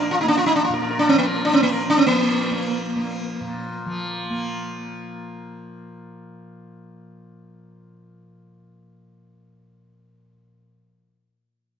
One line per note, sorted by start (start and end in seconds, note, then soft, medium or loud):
0.00 0.69 A#2 medium
0.00 1.13 F3 medium
0.00 0.24 A#3 medium
0.00 0.11 D4 loud
0.00 0.18 A#4 soft
0.11 0.20 F4 medium
0.21 1.60 A#3 medium
0.21 0.28 D#4 loud
0.28 0.37 D4 loud
0.37 0.46 F4 loud
0.46 0.54 D#4 loud
0.56 0.64 D4 loud
0.64 0.72 F4 medium
0.69 3.40 A#2 medium
0.74 0.81 A#4 soft
0.82 0.89 A#4 soft
0.91 1.07 A#4 soft
0.99 1.08 D4 loud
1.09 1.18 C4 loud
1.14 2.07 F3 medium
1.18 1.26 A#3 medium
1.27 1.35 A#4 soft
1.36 1.52 A#4 soft
1.45 1.54 D4 loud
1.53 1.61 C4 medium
1.60 2.51 A#3 medium
1.60 1.70 A#3 medium
1.72 1.79 A#4 soft
1.80 1.96 A#4 soft
1.90 1.98 D4 loud
1.98 2.06 C4 medium
2.06 3.86 F3 medium
2.06 5.98 A#3 medium
2.51 2.96 A#3 medium
2.96 4.30 A#3 medium
3.41 10.56 A#2 medium
3.86 10.86 F3 medium
4.30 10.20 A#3 medium